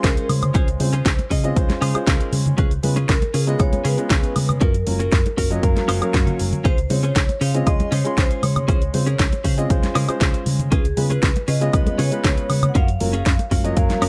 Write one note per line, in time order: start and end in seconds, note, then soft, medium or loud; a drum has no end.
0.00 0.77 G#3 medium
0.00 0.77 C#4 medium
0.00 0.29 C#4 medium
0.00 0.78 F4 medium
0.00 0.30 A#4 loud
0.00 0.78 C6 loud
0.00 kick loud
0.00 closed hi-hat medium
0.00 cabasa medium
0.04 0.14 C#2 medium
0.04 0.29 F4 medium
0.04 0.30 G#4 medium
0.04 0.30 C5 medium
0.04 snare loud
0.17 closed hi-hat soft
0.17 cabasa soft
0.29 0.50 C#3 loud
0.29 1.27 C5 medium
0.29 open hi-hat loud
0.29 high conga medium
0.29 high woodblock medium
0.42 closed hi-hat soft
0.42 low conga medium
0.42 cabasa medium
0.42 high woodblock medium
0.54 0.75 C#2 loud
0.54 0.68 C#4 loud
0.54 0.68 F4 loud
0.54 0.68 G#4 loud
0.54 0.68 C5 loud
0.54 kick loud
0.54 closed hi-hat medium
0.54 muted conga medium
0.54 cabasa medium
0.68 closed hi-hat soft
0.68 cabasa soft
0.80 1.00 C#3 medium
0.80 0.89 G#3 medium
0.80 0.89 C4 medium
0.80 0.90 C#4 medium
0.80 0.90 F4 medium
0.80 0.90 C5 medium
0.80 muted clean electric guitar stroke soft
0.80 open hi-hat loud
0.80 high conga medium
0.93 1.12 C#4 medium
0.93 1.12 F4 medium
0.93 1.12 G#4 medium
0.93 1.12 C5 medium
0.93 closed hi-hat soft
0.93 muted conga soft
0.93 cabasa medium
1.05 1.16 C#2 loud
1.05 kick loud
1.05 snare loud
1.05 closed hi-hat medium
1.05 cabasa medium
1.19 closed hi-hat soft
1.19 muted conga soft
1.19 cabasa soft
1.30 1.51 C#3 medium
1.30 1.44 C#4 loud
1.30 1.44 F4 medium
1.30 1.44 G#4 medium
1.30 1.44 D#5 medium
1.30 kick medium
1.30 open hi-hat loud
1.44 1.53 G#3 loud
1.44 1.53 C4 medium
1.44 1.54 C#4 medium
1.44 1.54 F4 medium
1.44 1.54 D#5 loud
1.44 cabasa medium
1.56 1.67 C#2 loud
1.56 1.92 G#3 loud
1.56 1.92 C#4 medium
1.56 1.92 F4 medium
1.56 1.92 C5 loud
1.56 muted clean electric guitar stroke soft
1.56 kick loud
1.56 closed hi-hat medium
1.56 cabasa medium
1.70 snare soft
1.70 closed hi-hat soft
1.70 high conga medium
1.70 cabasa soft
1.81 1.92 C#3 medium
1.81 1.95 C#4 loud
1.81 1.95 F4 medium
1.81 1.95 G#4 loud
1.81 1.95 C5 loud
1.81 open hi-hat loud
1.81 high woodblock medium
1.94 2.56 G#3 medium
1.94 2.57 C#4 medium
1.94 2.57 F4 medium
1.94 2.57 C5 loud
1.94 muted picked electric bass stroke soft
1.94 closed hi-hat soft
1.94 cabasa medium
1.94 high woodblock medium
2.07 2.18 C#2 medium
2.07 2.33 C#4 medium
2.07 2.33 F4 medium
2.07 2.33 G#4 medium
2.07 2.33 A#4 loud
2.07 kick loud
2.07 snare loud
2.07 closed hi-hat medium
2.07 cabasa medium
2.20 closed hi-hat soft
2.20 cabasa soft
2.33 2.53 C#3 loud
2.33 open hi-hat loud
2.33 high conga medium
2.46 closed hi-hat soft
2.46 low conga medium
2.46 cabasa medium
2.57 2.78 C#2 loud
2.57 2.71 C#4 loud
2.57 2.71 F4 loud
2.57 2.71 G#4 loud
2.57 2.72 B4 loud
2.57 kick loud
2.57 closed hi-hat medium
2.57 muted conga soft
2.57 cabasa medium
2.71 closed hi-hat soft
2.71 cabasa soft
2.83 3.04 C#3 medium
2.83 2.93 G#3 medium
2.83 2.93 B3 medium
2.83 2.93 C#4 medium
2.83 2.93 F4 medium
2.83 2.93 B4 medium
2.83 muted clean electric guitar stroke soft
2.83 open hi-hat loud
2.83 high conga medium
2.96 3.15 C#4 loud
2.96 3.16 F4 medium
2.96 3.16 G#4 medium
2.96 3.16 B4 medium
2.96 closed hi-hat soft
2.96 muted conga medium
2.96 cabasa medium
3.09 3.19 C#2 loud
3.09 3.35 A#4 loud
3.09 kick loud
3.09 snare loud
3.09 closed hi-hat medium
3.09 cabasa medium
3.22 closed hi-hat soft
3.22 muted conga soft
3.22 cabasa soft
3.34 3.54 C#3 medium
3.34 3.47 C#4 medium
3.34 3.48 F4 medium
3.34 3.60 G#4 medium
3.34 3.48 G#4 medium
3.34 3.48 B4 medium
3.34 open hi-hat loud
3.47 3.57 G#3 loud
3.47 3.57 B3 medium
3.47 3.57 C#4 medium
3.47 3.57 F4 medium
3.47 3.57 D#5 loud
3.47 closed hi-hat soft
3.47 cabasa medium
3.59 3.70 C#2 loud
3.59 3.95 G#3 loud
3.59 3.95 B3 medium
3.59 3.95 C#4 medium
3.59 3.95 F4 medium
3.59 3.83 C#5 loud
3.59 muted clean electric guitar stroke soft
3.59 kick loud
3.59 closed hi-hat medium
3.59 cabasa medium
3.59 high woodblock medium
3.73 closed hi-hat soft
3.73 high conga medium
3.73 cabasa soft
3.84 3.96 C#3 medium
3.84 3.98 C#4 loud
3.84 3.98 F4 medium
3.84 3.99 G#4 loud
3.84 3.99 A#4 loud
3.84 4.63 B4 loud
3.84 open hi-hat loud
3.97 4.60 G#3 loud
3.97 4.60 B3 medium
3.97 4.60 C#4 medium
3.97 4.60 F4 medium
3.97 closed hi-hat soft
3.97 cabasa medium
4.10 4.21 C#2 medium
4.10 4.36 C#4 medium
4.10 4.36 F4 medium
4.10 4.36 G#4 medium
4.10 4.36 B4 loud
4.10 kick loud
4.10 snare loud
4.10 closed hi-hat medium
4.10 cabasa medium
4.23 closed hi-hat soft
4.23 cabasa soft
4.36 4.56 C#3 loud
4.36 open hi-hat loud
4.36 high conga medium
4.36 high woodblock medium
4.49 closed hi-hat soft
4.49 low conga medium
4.49 cabasa medium
4.49 high woodblock medium
4.60 4.82 F#2 loud
4.60 4.74 C#4 loud
4.60 4.75 F4 loud
4.60 4.75 F#4 loud
4.60 5.59 A#4 loud
4.60 4.75 A#4 loud
4.60 kick loud
4.60 closed hi-hat medium
4.60 muted conga soft
4.60 cabasa medium
4.74 closed hi-hat soft
4.74 cabasa soft
4.86 5.07 F#1 medium
4.86 4.96 F#3 medium
4.86 4.96 A#3 medium
4.86 4.96 C#4 medium
4.86 4.96 F4 medium
4.86 4.97 A#4 medium
4.86 muted clean electric guitar stroke soft
4.86 open hi-hat loud
4.86 high conga medium
4.99 5.19 C#4 loud
4.99 5.19 F4 medium
4.99 5.19 F#4 medium
4.99 5.19 A#4 medium
4.99 closed hi-hat soft
4.99 muted conga soft
4.99 cabasa medium
5.11 5.23 F#2 loud
5.11 kick loud
5.11 snare loud
5.11 closed hi-hat medium
5.11 cabasa medium
5.26 closed hi-hat soft
5.26 muted conga medium
5.26 cabasa soft
5.37 5.58 F#1 medium
5.37 5.51 C#4 loud
5.37 5.51 F4 medium
5.37 5.51 F#4 medium
5.37 5.51 A#4 medium
5.37 kick medium
5.37 open hi-hat loud
5.50 5.60 F#3 medium
5.50 5.60 A#3 medium
5.50 5.60 C#4 medium
5.50 5.60 F4 medium
5.50 5.61 D#5 loud
5.50 cabasa medium
5.63 5.74 F#2 loud
5.63 5.99 F#3 loud
5.63 5.99 A#3 medium
5.63 5.99 C#4 medium
5.63 5.99 A#4 loud
5.63 5.99 F5 medium
5.63 kick loud
5.63 closed hi-hat medium
5.63 cabasa medium
5.76 snare soft
5.76 closed hi-hat soft
5.76 high conga medium
5.76 cabasa soft
5.88 5.99 F#1 medium
5.88 6.02 C#4 loud
5.88 6.02 F4 loud
5.88 6.02 F#4 loud
5.88 6.02 C5 loud
5.88 open hi-hat loud
5.88 high woodblock medium
6.01 6.63 F#3 loud
6.01 6.63 A#3 medium
6.01 6.64 C#4 medium
6.01 6.64 A#4 loud
6.01 6.64 F5 medium
6.01 muted picked electric bass stroke soft
6.01 closed hi-hat soft
6.01 cabasa medium
6.01 high woodblock medium
6.13 6.24 F#2 loud
6.13 6.39 C#4 medium
6.13 6.39 F4 medium
6.13 6.40 F#4 medium
6.13 6.40 C#5 medium
6.13 kick loud
6.13 snare loud
6.13 closed hi-hat medium
6.13 cabasa medium
6.27 closed hi-hat soft
6.27 low conga medium
6.27 cabasa soft
6.39 6.50 F#1 medium
6.39 open hi-hat loud
6.39 high conga medium
6.53 closed hi-hat soft
6.53 low conga medium
6.53 cabasa medium
6.64 6.85 C#2 medium
6.64 6.78 C#4 loud
6.64 6.78 F4 loud
6.64 6.78 G#4 loud
6.64 6.89 C5 loud
6.64 6.78 C5 loud
6.64 kick loud
6.64 closed hi-hat medium
6.64 muted conga soft
6.64 cabasa medium
6.78 closed hi-hat soft
6.78 cabasa soft
6.90 7.10 C#3 medium
6.90 6.99 G#3 medium
6.90 7.00 C4 medium
6.90 7.00 C#4 medium
6.90 7.00 F4 medium
6.90 7.00 C5 medium
6.90 7.43 C#5 loud
6.90 muted clean electric guitar stroke soft
6.90 open hi-hat loud
6.90 high conga medium
7.03 7.22 C#4 loud
7.03 7.22 F4 medium
7.03 7.23 G#4 medium
7.03 7.23 C5 medium
7.03 closed hi-hat soft
7.03 muted conga soft
7.03 cabasa medium
7.15 7.26 C#2 loud
7.15 kick loud
7.15 snare loud
7.15 closed hi-hat medium
7.15 cabasa medium
7.29 closed hi-hat soft
7.29 muted conga soft
7.29 cabasa soft
7.41 7.61 C#3 medium
7.41 7.54 C#4 loud
7.41 7.54 F4 medium
7.41 7.55 G#4 medium
7.41 7.55 C5 medium
7.41 7.67 F5 loud
7.41 open hi-hat loud
7.54 7.64 G#3 medium
7.54 7.64 C4 medium
7.54 7.64 C#4 medium
7.54 7.64 F4 medium
7.54 7.64 D#5 loud
7.54 closed hi-hat soft
7.54 cabasa medium
7.66 7.77 C#2 loud
7.66 8.02 G#3 loud
7.66 8.02 C#4 medium
7.66 8.02 F4 medium
7.66 7.93 D#5 loud
7.66 8.03 C6 loud
7.66 muted clean electric guitar stroke soft
7.66 kick loud
7.66 closed hi-hat medium
7.66 cabasa medium
7.66 high woodblock medium
7.80 closed hi-hat soft
7.80 high conga medium
7.80 cabasa soft
7.92 8.02 C#3 medium
7.92 8.05 C#4 loud
7.92 8.05 F4 medium
7.92 8.05 G#4 loud
7.92 8.06 C5 loud
7.92 8.18 C#5 medium
7.92 open hi-hat loud
8.05 8.90 G#3 loud
8.05 8.91 C#4 medium
8.05 8.91 F4 medium
8.05 8.92 C6 loud
8.05 closed hi-hat soft
8.05 cabasa medium
8.17 8.28 C#2 medium
8.17 8.43 C#4 medium
8.17 8.43 F4 medium
8.17 8.43 G#4 medium
8.17 8.44 C5 loud
8.17 8.43 C5 medium
8.17 kick loud
8.17 snare loud
8.17 closed hi-hat medium
8.17 cabasa medium
8.31 closed hi-hat soft
8.31 cabasa soft
8.43 8.63 C#3 loud
8.43 9.41 C#5 medium
8.43 open hi-hat loud
8.43 high conga medium
8.43 high woodblock medium
8.56 closed hi-hat soft
8.56 low conga medium
8.56 cabasa medium
8.56 high woodblock medium
8.68 8.89 C#2 loud
8.68 8.81 C#4 loud
8.68 8.82 F4 loud
8.68 8.82 G#4 loud
8.68 8.82 C5 loud
8.68 kick loud
8.68 closed hi-hat medium
8.68 muted conga soft
8.68 cabasa medium
8.81 closed hi-hat soft
8.81 cabasa soft
8.93 9.14 C#3 medium
8.93 9.03 G#3 medium
8.93 9.03 C4 medium
8.93 9.03 C#4 medium
8.93 9.03 F4 medium
8.93 9.03 C5 medium
8.93 muted clean electric guitar stroke soft
8.93 open hi-hat loud
8.93 high conga medium
9.06 9.26 C#4 medium
9.06 9.26 F4 medium
9.06 9.26 G#4 medium
9.06 9.26 A#4 medium
9.06 closed hi-hat soft
9.06 muted conga soft
9.06 cabasa medium
9.19 9.30 C#2 loud
9.19 kick loud
9.19 snare loud
9.19 closed hi-hat medium
9.19 cabasa medium
9.32 closed hi-hat soft
9.32 muted conga soft
9.32 cabasa soft
9.44 9.65 C#3 medium
9.44 9.58 C#4 medium
9.44 9.58 F4 medium
9.44 9.58 G#4 medium
9.44 9.58 C5 medium
9.44 kick medium
9.44 open hi-hat loud
9.57 9.67 G#3 medium
9.57 9.67 C4 medium
9.57 9.67 C#4 medium
9.57 9.67 F4 medium
9.57 9.67 D#5 loud
9.57 closed hi-hat soft
9.57 cabasa medium
9.70 9.80 C#2 loud
9.70 10.05 G#3 loud
9.70 10.06 C#4 medium
9.70 10.06 F4 medium
9.70 10.06 C5 loud
9.70 muted clean electric guitar stroke soft
9.70 kick loud
9.70 closed hi-hat medium
9.70 cabasa medium
9.83 snare soft
9.83 closed hi-hat soft
9.83 high conga medium
9.83 cabasa soft
9.95 10.06 C#3 medium
9.95 10.09 C#4 loud
9.95 10.09 F4 loud
9.95 10.09 G#4 loud
9.95 10.09 A#4 loud
9.95 open hi-hat loud
9.95 high woodblock medium
10.08 10.70 G#3 loud
10.08 10.70 C#4 medium
10.08 10.71 F4 medium
10.08 10.71 C5 loud
10.08 muted picked electric bass stroke soft
10.08 closed hi-hat soft
10.08 cabasa medium
10.08 high woodblock medium
10.21 10.31 C#2 medium
10.21 10.46 C#4 medium
10.21 10.46 F4 medium
10.21 10.47 G#4 medium
10.21 10.47 C5 medium
10.21 kick loud
10.21 snare loud
10.21 closed hi-hat medium
10.21 cabasa medium
10.34 closed hi-hat soft
10.34 cabasa soft
10.46 10.67 C#3 loud
10.46 open hi-hat loud
10.46 high conga medium
10.59 closed hi-hat soft
10.59 low conga medium
10.59 cabasa medium
10.71 10.92 C#2 loud
10.71 10.85 C#4 loud
10.71 10.85 F4 loud
10.71 10.85 G#4 loud
10.71 10.98 G#4 loud
10.71 10.85 B4 loud
10.71 kick loud
10.71 closed hi-hat medium
10.71 muted conga soft
10.71 cabasa medium
10.85 closed hi-hat soft
10.85 cabasa soft
10.97 11.17 C#3 medium
10.97 11.06 G#3 medium
10.97 11.06 B3 medium
10.97 11.07 C#4 medium
10.97 11.07 F4 medium
10.97 11.50 B4 medium
10.97 11.07 B4 medium
10.97 muted clean electric guitar stroke soft
10.97 open hi-hat loud
10.97 high conga medium
11.10 11.29 C#4 loud
11.10 11.29 F4 medium
11.10 11.29 G#4 medium
11.10 11.30 B4 medium
11.10 closed hi-hat soft
11.10 muted conga medium
11.10 cabasa medium
11.23 11.33 C#2 loud
11.23 kick loud
11.23 snare loud
11.23 closed hi-hat medium
11.23 cabasa medium
11.36 closed hi-hat soft
11.36 muted conga medium
11.36 cabasa soft
11.48 11.68 C#3 medium
11.48 11.61 C#4 medium
11.48 11.61 F4 medium
11.48 11.62 G#4 medium
11.48 11.62 B4 medium
11.48 11.95 D#5 loud
11.48 open hi-hat loud
11.61 11.70 G#3 loud
11.61 11.71 B3 medium
11.61 11.71 C#4 medium
11.61 11.71 F4 medium
11.61 11.71 D#5 loud
11.61 closed hi-hat soft
11.61 cabasa medium
11.73 11.84 C#2 loud
11.73 12.09 G#3 loud
11.73 12.09 B3 medium
11.73 12.09 C#4 medium
11.73 12.09 F4 medium
11.73 12.09 B4 loud
11.73 muted clean electric guitar stroke soft
11.73 kick loud
11.73 closed hi-hat medium
11.73 cabasa medium
11.73 high woodblock medium
11.87 closed hi-hat soft
11.87 high conga medium
11.87 cabasa soft
11.98 12.09 C#3 medium
11.98 12.12 C#4 loud
11.98 12.12 F4 medium
11.98 12.12 G#4 loud
11.98 12.12 B4 loud
11.98 12.49 C#5 loud
11.98 open hi-hat loud
12.11 12.73 G#3 loud
12.11 12.73 B3 medium
12.11 12.74 C#4 medium
12.11 12.74 F4 medium
12.11 12.74 B4 loud
12.11 closed hi-hat soft
12.11 cabasa medium
12.24 12.35 C#2 medium
12.24 12.50 C#4 medium
12.24 12.50 F4 medium
12.24 12.50 G#4 medium
12.24 12.50 B4 medium
12.24 kick loud
12.24 snare loud
12.24 closed hi-hat medium
12.24 cabasa medium
12.38 closed hi-hat soft
12.38 cabasa soft
12.50 12.70 C#3 loud
12.50 12.69 C#5 loud
12.50 open hi-hat loud
12.50 high conga medium
12.50 high woodblock medium
12.63 closed hi-hat soft
12.63 low conga medium
12.63 cabasa medium
12.63 high woodblock medium
12.69 12.75 F#5 medium
12.75 12.95 F#2 loud
12.75 12.88 C#4 loud
12.75 12.88 F4 loud
12.75 12.89 F#4 loud
12.75 12.89 A#4 loud
12.75 14.09 F5 loud
12.75 kick loud
12.75 closed hi-hat medium
12.75 muted conga soft
12.75 cabasa medium
12.88 closed hi-hat soft
12.88 cabasa soft
13.00 13.21 F#1 medium
13.00 13.10 F#3 medium
13.00 13.10 A#3 medium
13.00 13.10 C#4 medium
13.00 13.10 F4 medium
13.00 13.10 A#4 medium
13.00 muted clean electric guitar stroke soft
13.00 open hi-hat loud
13.00 high conga medium
13.13 13.32 C#4 loud
13.13 13.33 F4 medium
13.13 13.33 F#4 medium
13.13 13.33 G#4 loud
13.13 closed hi-hat soft
13.13 muted conga medium
13.13 cabasa medium
13.25 13.36 F#2 loud
13.25 kick loud
13.25 snare loud
13.25 closed hi-hat medium
13.25 cabasa medium
13.39 closed hi-hat soft
13.39 muted conga medium
13.39 cabasa soft
13.51 13.72 F#1 medium
13.51 13.64 C#4 medium
13.51 13.65 F4 medium
13.51 13.65 F#4 medium
13.51 13.65 A#4 medium
13.51 kick medium
13.51 open hi-hat loud
13.51 high conga medium
13.64 13.74 F#3 loud
13.64 13.74 A#3 medium
13.64 13.74 C#4 medium
13.64 13.74 F4 medium
13.64 13.74 D#5 loud
13.64 closed hi-hat soft
13.64 cabasa medium
13.76 13.87 F#2 loud
13.76 14.09 F#3 loud
13.76 14.09 A#3 medium
13.76 14.09 C#4 medium
13.76 14.09 A#4 loud
13.76 14.09 F5 medium
13.76 muted clean electric guitar stroke soft
13.76 kick loud
13.76 closed hi-hat medium
13.76 cabasa medium
13.90 snare soft
13.90 closed hi-hat soft
13.90 high conga medium
13.90 cabasa soft
14.02 14.09 F#1 loud
14.02 14.09 C#4 loud
14.02 14.09 F4 medium
14.02 14.09 F#4 loud
14.02 14.09 A#4 loud
14.02 open hi-hat loud
14.02 high woodblock medium